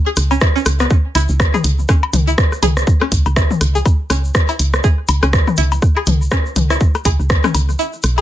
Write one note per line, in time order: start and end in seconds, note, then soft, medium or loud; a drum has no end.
0.06 0.10 G#4 medium
0.16 0.37 C#2 loud
0.16 cross-stick soft
0.16 closed hi-hat loud
0.16 shaker loud
0.31 0.34 C#4 medium
0.31 cowbell medium
0.31 shaker soft
0.41 0.48 E4 medium
0.41 kick loud
0.41 cross-stick medium
0.41 shaker medium
0.56 0.58 C#4 loud
0.56 shaker soft
0.66 0.87 C#2 medium
0.66 cross-stick medium
0.66 closed hi-hat loud
0.66 shaker medium
0.79 0.82 B3 medium
0.79 cross-stick medium
0.79 shaker soft
0.90 kick loud
0.90 shaker soft
1.15 1.27 C#2 loud
1.15 1.20 E4 medium
1.15 closed hi-hat medium
1.15 low woodblock medium
1.15 shaker medium
1.28 1.49 C#2 loud
1.28 shaker soft
1.40 kick loud
1.40 cross-stick soft
1.40 cross-stick medium
1.40 cowbell medium
1.40 shaker soft
1.54 1.56 G#4 medium
1.54 mid tom medium
1.54 low woodblock medium
1.54 shaker soft
1.64 1.85 C#2 loud
1.64 closed hi-hat medium
1.64 shaker medium
1.79 shaker soft
1.89 1.91 C#4 medium
1.89 kick loud
1.89 cross-stick medium
1.89 shaker medium
2.03 cowbell medium
2.03 low woodblock medium
2.13 2.34 C#2 loud
2.13 closed hi-hat medium
2.13 mid tom medium
2.13 shaker loud
2.27 2.31 E4 medium
2.27 shaker soft
2.38 kick loud
2.38 cross-stick medium
2.38 shaker soft
2.52 cross-stick soft
2.52 shaker soft
2.62 2.83 C#2 medium
2.62 2.65 G#4 medium
2.62 closed hi-hat medium
2.62 mid tom medium
2.62 cowbell medium
2.62 shaker medium
2.77 cross-stick medium
2.77 shaker soft
2.87 kick loud
2.87 shaker soft
3.01 3.03 C#4 medium
3.01 cross-stick medium
3.12 3.23 C#2 loud
3.12 kick medium
3.12 closed hi-hat medium
3.12 shaker medium
3.26 3.45 C#2 loud
3.26 cowbell medium
3.26 shaker soft
3.36 3.41 E4 medium
3.36 kick loud
3.36 cross-stick medium
3.36 shaker medium
3.51 mid tom medium
3.51 shaker soft
3.61 3.82 C#2 loud
3.61 cross-stick soft
3.61 closed hi-hat medium
3.61 shaker medium
3.75 3.77 G#4 medium
3.75 shaker soft
3.86 kick loud
3.86 cowbell medium
3.86 shaker medium
4.10 4.31 C#2 loud
4.10 4.13 C#4 medium
4.10 cross-stick medium
4.10 closed hi-hat medium
4.10 shaker loud
4.24 shaker soft
4.34 kick loud
4.34 cross-stick medium
4.34 shaker medium
4.49 4.52 E4 medium
4.49 cowbell medium
4.49 shaker soft
4.59 4.80 C#2 medium
4.59 closed hi-hat medium
4.59 shaker loud
4.73 cross-stick soft
4.73 cross-stick medium
4.73 shaker soft
4.84 4.87 G#4 medium
4.84 kick loud
4.84 shaker medium
5.08 5.20 C#2 loud
5.08 closed hi-hat medium
5.08 cowbell medium
5.08 low woodblock medium
5.08 shaker medium
5.23 5.42 C#2 loud
5.23 5.25 C#4 medium
5.23 cross-stick medium
5.23 shaker soft
5.33 kick loud
5.33 cross-stick medium
5.33 shaker soft
5.47 mid tom medium
5.47 low woodblock soft
5.47 shaker soft
5.57 5.78 C#2 loud
5.57 5.62 E4 medium
5.57 closed hi-hat medium
5.57 shaker medium
5.72 cowbell medium
5.72 shaker soft
5.82 kick loud
5.82 cross-stick soft
5.82 shaker soft
5.96 5.98 G#4 medium
5.96 low woodblock medium
6.06 6.28 C#2 loud
6.06 closed hi-hat medium
6.06 mid tom medium
6.06 shaker medium
6.21 shaker soft
6.31 6.34 C#4 medium
6.31 kick loud
6.31 cross-stick medium
6.31 cowbell medium
6.31 shaker medium
6.46 shaker soft
6.56 6.77 C#2 medium
6.56 closed hi-hat medium
6.56 mid tom medium
6.56 shaker medium
6.70 6.74 E4 medium
6.70 cross-stick medium
6.70 shaker soft
6.80 kick loud
6.80 shaker medium
6.95 cross-stick soft
6.95 cowbell medium
6.95 shaker soft
7.05 7.17 C#2 loud
7.05 7.08 G#4 medium
7.05 kick medium
7.05 closed hi-hat medium
7.05 low woodblock medium
7.05 shaker medium
7.19 7.39 C#2 loud
7.19 shaker soft
7.30 kick loud
7.30 cross-stick loud
7.30 shaker medium
7.44 7.46 C#4 medium
7.44 cross-stick medium
7.44 mid tom loud
7.44 low woodblock soft
7.44 shaker soft
7.54 7.75 C#2 loud
7.54 closed hi-hat medium
7.54 cowbell medium
7.54 shaker medium
7.69 shaker soft
7.79 7.83 E4 medium
7.79 shaker medium
7.93 shaker soft
8.03 8.21 B1 loud
8.03 cross-stick soft
8.03 closed hi-hat medium
8.03 shaker medium
8.18 8.20 G#4 medium
8.18 cowbell medium
8.18 shaker soft